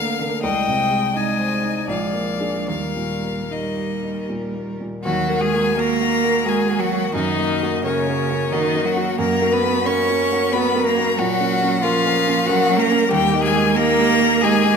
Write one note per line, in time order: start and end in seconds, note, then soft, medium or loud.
0.00 0.39 D2 medium
0.00 0.19 D3 medium
0.00 0.39 A#3 medium
0.00 0.45 A#3 medium
0.00 0.39 A#4 medium
0.00 0.45 A#4 medium
0.00 0.42 F5 loud
0.19 0.43 D3 soft
0.43 1.85 C2 medium
0.43 1.11 G#3 medium
0.43 1.11 D#5 medium
0.43 1.18 G5 loud
0.68 1.06 C3 medium
0.91 1.29 G#3 soft
1.15 1.87 G#3 medium
1.15 1.54 D#4 medium
1.15 1.88 D#5 medium
1.15 1.89 G#5 medium
1.39 1.78 C5 soft
1.63 1.88 D#4 soft
1.88 2.66 A#1 medium
1.88 2.70 G#3 medium
1.88 2.70 D5 soft
1.88 2.67 F5 medium
2.13 2.57 A#3 soft
2.40 2.65 D4 soft
2.40 2.65 G#4 soft
2.67 5.00 D#2 medium
2.67 3.49 G3 soft
2.67 3.48 A#4 medium
2.67 3.53 F5 medium
2.96 3.39 A#2 soft
3.23 3.66 A#3 soft
3.49 4.81 G3 medium
3.49 3.92 D#4 soft
3.49 4.81 A#4 soft
3.49 4.29 D#5 medium
3.77 4.18 G4 soft
4.03 4.44 D#4 soft
4.29 4.70 A#2 soft
4.55 4.95 A#3 soft
4.80 5.04 A#2 soft
5.03 5.28 D#2 medium
5.03 5.41 F#3 medium
5.03 5.42 F#4 medium
5.03 5.42 F#5 medium
5.29 5.50 A#3 soft
5.29 5.50 F#4 soft
5.29 5.50 A#4 medium
5.39 5.77 G#3 medium
5.39 5.76 G#4 medium
5.39 5.80 G#5 medium
5.53 5.74 A#3 soft
5.53 5.74 F#4 soft
5.53 5.75 A#4 medium
5.75 6.47 A#3 medium
5.75 5.98 A#3 soft
5.75 5.98 F#4 soft
5.75 6.47 A#4 medium
5.75 5.98 A#4 medium
5.75 6.51 A#5 loud
6.00 6.21 A#3 soft
6.00 6.21 F#4 soft
6.00 6.21 A#4 soft
6.24 6.44 A#3 soft
6.24 6.44 F#4 soft
6.24 6.44 A#4 soft
6.45 6.80 G#3 medium
6.45 6.66 A#3 soft
6.45 6.66 F#4 medium
6.45 6.81 G#4 medium
6.45 6.66 A#4 medium
6.49 6.82 G#5 medium
6.68 6.89 A#3 soft
6.68 6.89 F#4 soft
6.68 6.89 A#4 medium
6.78 7.12 F#3 medium
6.78 7.14 F#4 medium
6.78 7.14 F#5 medium
6.91 7.12 A#3 soft
6.91 7.12 F#4 soft
6.91 7.12 A#4 soft
7.13 7.37 F#2 medium
7.13 7.81 D#3 medium
7.13 7.82 D#4 medium
7.13 7.82 D#5 medium
7.38 7.58 A#3 soft
7.38 7.59 F#4 soft
7.38 7.59 A#4 soft
7.62 7.82 A#3 medium
7.62 7.82 F#4 soft
7.62 7.82 A#4 medium
7.83 8.50 C#3 medium
7.83 8.05 A#3 medium
7.83 8.54 C#4 medium
7.83 8.05 F#4 medium
7.83 8.05 A#4 medium
7.83 8.54 C#5 medium
8.07 8.27 A#3 soft
8.07 8.28 F#4 soft
8.07 8.28 A#4 medium
8.30 8.50 A#3 soft
8.30 8.50 F#4 soft
8.30 8.50 A#4 medium
8.51 8.85 D#3 medium
8.51 8.72 A#3 medium
8.51 8.87 D#4 medium
8.51 8.72 F#4 medium
8.51 8.73 A#4 medium
8.51 8.88 D#5 medium
8.74 8.94 A#3 soft
8.74 8.94 F#4 soft
8.74 8.95 A#4 medium
8.84 9.16 F#3 medium
8.84 9.18 F#4 medium
8.84 9.19 F#5 medium
8.96 9.16 A#3 medium
8.96 9.17 F#4 soft
8.96 9.17 A#4 medium
9.17 9.40 F#2 medium
9.17 9.54 A#3 medium
9.17 9.54 A#4 medium
9.17 9.54 A#5 medium
9.41 9.61 A#3 medium
9.41 9.61 F#4 medium
9.41 9.62 A#4 medium
9.52 9.87 B3 medium
9.52 9.87 B4 medium
9.52 9.88 B5 loud
9.63 9.84 A#3 medium
9.63 9.84 F#4 medium
9.63 9.84 A#4 medium
9.85 10.06 A#3 medium
9.85 10.55 C#4 medium
9.85 10.07 F#4 soft
9.85 10.07 A#4 medium
9.85 10.53 C#5 medium
9.85 10.54 C#6 loud
10.09 10.29 A#3 soft
10.09 10.29 F#4 soft
10.09 10.29 A#4 medium
10.31 10.51 A#3 medium
10.31 10.52 F#4 medium
10.31 10.52 A#4 soft
10.52 10.73 A#3 medium
10.52 10.86 B3 medium
10.52 10.73 F#4 medium
10.52 10.73 A#4 medium
10.52 10.87 B4 medium
10.52 10.85 B5 loud
10.75 10.94 A#3 medium
10.75 10.94 F#4 medium
10.75 10.95 A#4 medium
10.85 11.17 A#3 medium
10.85 11.17 A#4 medium
10.85 11.20 A#5 loud
10.97 11.16 A#3 medium
10.97 11.16 F#4 medium
10.97 11.17 A#4 medium
11.17 11.39 A#2 medium
11.17 11.84 F#3 medium
11.17 11.80 F#4 medium
11.17 11.85 F#5 loud
11.40 11.59 A#3 medium
11.40 11.59 C#4 soft
11.40 11.59 A#4 medium
11.62 11.81 A#3 medium
11.62 11.81 C#4 medium
11.62 11.81 A#4 medium
11.82 12.48 F3 loud
11.82 12.02 A#3 medium
11.82 12.02 C#4 medium
11.82 12.47 F4 medium
11.82 12.02 A#4 medium
11.82 12.49 F5 loud
12.05 12.24 A#3 medium
12.05 12.24 C#4 medium
12.05 12.24 A#4 medium
12.27 12.45 A#3 medium
12.27 12.45 C#4 medium
12.27 12.45 A#4 medium
12.45 12.79 F#3 medium
12.45 12.66 A#3 medium
12.45 12.66 C#4 medium
12.45 12.78 F#4 medium
12.45 12.66 A#4 medium
12.45 12.81 F#5 loud
12.69 12.87 A#3 medium
12.69 12.87 C#4 medium
12.69 12.88 A#4 medium
12.77 13.09 A#3 medium
12.77 13.10 A#4 medium
12.77 13.11 A#5 loud
12.90 13.09 A#3 medium
12.90 13.09 C#4 medium
12.90 13.09 A#4 medium
13.09 13.31 D#2 medium
13.09 13.42 G3 medium
13.09 13.43 G4 medium
13.09 13.43 G5 loud
13.32 13.52 A#3 medium
13.32 13.52 D#4 medium
13.32 13.52 G4 medium
13.42 13.77 G#3 medium
13.42 13.74 G#4 loud
13.42 13.78 G#5 loud
13.54 13.74 A#3 medium
13.54 13.74 D#4 medium
13.54 13.74 G4 medium
13.75 14.44 A#3 loud
13.75 13.96 A#3 medium
13.75 13.96 D#4 medium
13.75 13.96 G4 medium
13.75 14.43 A#4 loud
13.75 14.45 A#5 loud
13.99 14.18 A#3 medium
13.99 14.18 D#4 medium
13.99 14.19 G4 medium
14.21 14.40 A#3 medium
14.21 14.40 D#4 medium
14.21 14.40 G4 medium
14.42 14.76 G#3 loud
14.42 14.62 A#3 medium
14.42 14.62 D#4 medium
14.42 14.62 G4 medium
14.42 14.76 G#4 loud
14.42 14.77 G#5 loud
14.64 14.77 A#3 medium
14.64 14.77 D#4 medium
14.64 14.77 G4 medium